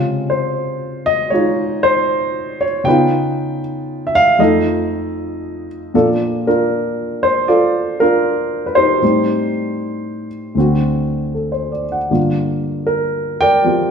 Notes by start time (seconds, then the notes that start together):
Already playing: C3 C#3 G#3 F4
0.30 C5
1.06 D#5
1.30 G#3 F4 C#5
1.34 D#4
1.83 C5
2.61 C#5
2.84 C#3 B3 D#4 B4 G5
2.90 F4
4.07 E5
4.15 F5
4.39 F2 F3 A3 D#4 A4 D#5
5.94 A#2 F3 A#3 D4 F4 A4 D5
6.47 D4 F4 A#4
7.23 C5
7.48 F4 A4 D5
8.00 D4 F4 A#4
8.66 B4
8.75 D#4 G4 C5
9.02 A2 G3 C4 D#4
10.55 D2 D3 C4
10.60 F#4
11.35 A4
11.52 C5
11.72 D5
11.92 F#5
12.11 G2 D3 A#3 F4
12.87 A#4
13.41 A#4 D5 G5
13.64 F3 C4 G4